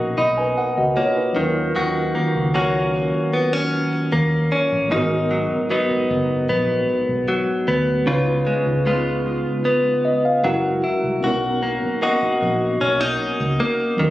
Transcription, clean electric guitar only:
Already playing: B2 A#3 D#4 F#4
0.18 D#4
0.97 A#3
1.36 D#3
1.75 D#3 F#4
2.15 A#3
2.54 A#3 C#4 F#4
3.33 B3
3.53 C#4
4.12 A#3
4.52 C#4
4.91 G#2 D#4
5.31 F#3
5.70 F#3 B3 D#4
6.49 B3
7.28 F#3
7.68 B3
8.07 C#3 F4
8.47 G#3
8.86 G#3 B3 F4
9.65 B3
10.44 F#3
10.84 E4
11.24 F#4
11.63 A#3
12.02 A#3 D#4 F#4
12.81 C#4
13.01 D#4
13.60 A#3
13.99 D#3

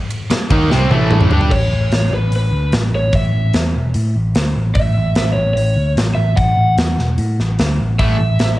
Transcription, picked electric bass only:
0.30 muted picked electric bass stroke
0.51 D#2
0.70 C2
0.90 A1
1.31 G2
1.52 A1
1.71 A1
1.92 A1
2.11 A1
2.32 A1
2.51 D2
2.73 A1
2.92 A1
3.13 A1
3.33 A1
3.54 E2
3.75 E1
3.95 A2
4.16 A1
4.36 D2
4.56 A1
4.75 A1
4.97 A1
5.16 A1
5.35 A1
5.55 A1
5.76 D2
5.96 A1
6.16 A1
6.37 A1
6.57 A1
6.77 E2
6.98 E1
7.18 A2
7.39 A1
7.59 D2
7.80 A1
7.99 A1
8.20 A1
8.40 A1

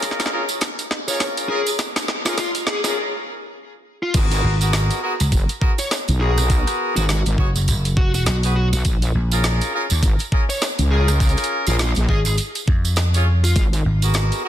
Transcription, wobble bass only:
4.14 G#1
5.32 F#1
6.08 B1
6.97 G#1
7.26 G#1
8.73 B1
8.85 A#1
10.03 G#1
10.79 C#2
11.67 A#1
11.97 A#1
13.56 G#1

